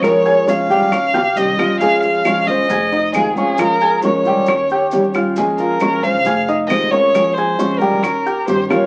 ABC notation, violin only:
X:1
M:4/4
L:1/8
Q:1/4=135
K:Bbdor
V:1 name="Violin"
d2 f4 e2 | f f2 e3 A A | B2 d4- d z | z B2 f2 z e d- |
d c2 B3 c d |]